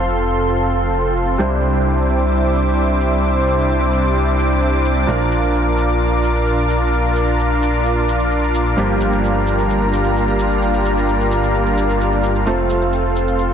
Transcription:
Already playing: F1 A3 C4 F4 A4 C5 F5 C6
0.01 shaker
0.24 shaker
0.35 shaker
0.47 shaker
0.70 shaker
0.81 shaker
0.93 shaker
1.05 shaker
1.16 shaker
1.28 shaker
1.38 C2 C3 G3 C4 D4 E4 C5 E5 D6, shaker
1.62 shaker
1.74 shaker
1.85 shaker
2.08 shaker
2.20 shaker
2.32 shaker
2.55 shaker
2.66 shaker
2.78 shaker
2.89 shaker
3.01 shaker
3.12 shaker
3.24 shaker
3.47 shaker
3.58 shaker
3.70 shaker
3.81 shaker
3.93 shaker
4.04 shaker
4.16 shaker
4.39 shaker
4.51 shaker
4.62 shaker
4.74 shaker
4.85 shaker
4.97 shaker
5.07 A#1 A#2 F3 A#3 D4 F4 A#4 F5, shaker
5.31 shaker
5.43 shaker
5.54 shaker
5.78 shaker
5.89 shaker
6.01 shaker
6.24 shaker
6.35 shaker
6.47 shaker
6.58 shaker
6.70 shaker
6.81 shaker
6.93 shaker
7.16 shaker
7.28 shaker
7.39 shaker
7.62 shaker
7.74 shaker
7.85 shaker
8.08 shaker
8.20 shaker
8.31 shaker
8.43 shaker
8.55 shaker
8.66 shaker
8.76 G1 G2 F3 G3 A#3 D4 F4 G4 A#4 A#5, shaker
9.01 shaker
9.12 shaker
9.24 shaker
9.47 shaker
9.58 shaker
9.70 shaker
9.93 shaker
10.05 shaker
10.16 shaker
10.28 shaker
10.39 shaker
10.51 shaker
10.62 shaker
10.74 shaker
10.85 shaker
10.97 shaker
11.08 shaker
11.20 shaker
11.32 shaker
11.43 shaker
11.55 shaker
11.66 shaker
11.78 shaker
11.89 shaker
12.01 shaker
12.12 shaker
12.24 shaker
12.35 shaker
12.46 F1 A3 C4 F4 A4 C5 C6, shaker
12.70 shaker
12.81 shaker
12.93 shaker
13.16 shaker
13.28 shaker
13.39 shaker

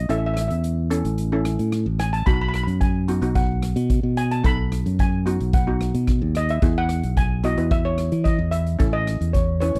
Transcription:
Already playing: D#5
0.09 A1 C#4 E4 A4 E5, closed hi-hat
0.18 E5
0.26 E5
0.34 E5, cross-stick, closed hi-hat
0.41 E5
0.48 E2 E5, closed hi-hat
0.64 closed hi-hat
0.90 C#4 E4 A4, closed hi-hat
1.05 A1, closed hi-hat
1.18 closed hi-hat
1.32 C#4 E4 A4
1.45 cross-stick, closed hi-hat
1.59 A2, closed hi-hat
1.72 cross-stick, closed hi-hat
1.86 A1
1.99 G#5, cross-stick, closed hi-hat
2.13 A5, closed hi-hat
2.26 B1 B3 D#4 F#4 B5, kick, closed hi-hat
2.34 B5
2.41 B5
2.49 B5
2.54 B5, cross-stick, closed hi-hat
2.64 F#2 B5
2.68 closed hi-hat
2.81 G#5, kick, closed hi-hat
3.08 B3 D#4 F#4, closed hi-hat
3.21 B1 B3 D#4 F#4, closed hi-hat
3.35 F#5, kick, closed hi-hat
3.62 cross-stick, closed hi-hat
3.76 B2, closed hi-hat
3.90 kick, closed hi-hat
4.03 B2
4.17 G#5, closed hi-hat
4.31 A5, closed hi-hat
4.44 B1 B3 D#4 A4 B5, kick, closed hi-hat
4.72 cross-stick, closed hi-hat
4.86 F#2, closed hi-hat
4.99 G#5, kick, closed hi-hat
5.26 B3 D#4 F#4, closed hi-hat
5.40 B1, closed hi-hat
5.53 F#5, kick, closed hi-hat
5.67 B3 D#4 F#4
5.81 cross-stick, closed hi-hat
5.94 B2, closed hi-hat
6.07 kick, cross-stick, closed hi-hat
6.22 D#2
6.35 D#5, cross-stick, closed hi-hat
6.49 E5, closed hi-hat
6.62 E2 B3 E4 G#4, kick, closed hi-hat
6.78 F#5
6.89 cross-stick, closed hi-hat
7.03 B1, closed hi-hat
7.17 G#5, kick, closed hi-hat
7.44 B3 E4 F#4 D#5, closed hi-hat
7.58 E2 B3 E4 B4, closed hi-hat
7.71 E5, kick, closed hi-hat
7.85 C#5
7.98 cross-stick, closed hi-hat
8.12 E3, closed hi-hat
8.24 D#5, kick, closed hi-hat
8.39 E2
8.51 E5, closed hi-hat
8.67 closed hi-hat
8.79 A1 C#4 E4 A4, kick, closed hi-hat
8.93 D#5
9.07 cross-stick, closed hi-hat
9.21 E2, closed hi-hat
9.33 C#5, kick, closed hi-hat
9.60 C#4 E4 B4 C#5, closed hi-hat
9.68 C#5
9.75 A1 C#5, closed hi-hat

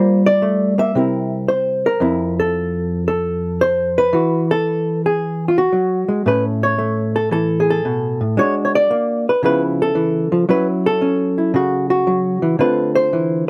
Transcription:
Already playing: G3 A#3 F4 A#4 C5
0.26 D5
0.42 A3
0.78 A#3 E5
0.95 C3 C4 E4 A#4
1.48 C5
1.86 A#4
2.00 F2 C4 E4
2.40 A4
3.08 A4
3.61 C5
3.98 B4
4.13 E3 F#4
4.51 A4
5.06 G#4
5.48 F4
5.58 F#4
5.72 F#3
6.08 G#3
6.26 A2 A3 C#4 B4
6.63 C#5
6.78 A3
7.16 A4
7.31 E3 A4
7.60 G#4
7.70 A4
7.85 B2
8.21 A2
8.37 G#3 D4 F#4 C#5
8.65 C#5
8.75 D5
8.91 A#3
9.29 B4
9.43 C#3 F3 B3 E4 B4
9.82 A4
9.95 E3
10.32 F3
10.49 F#3 C#4 E4 B4
10.86 A4
11.01 C#4
11.38 E4
11.54 C#3 F#4
11.90 F#4
12.07 F#3
12.42 E3
12.59 D3 A3 C4 F4 B4
12.95 C5
13.13 E3

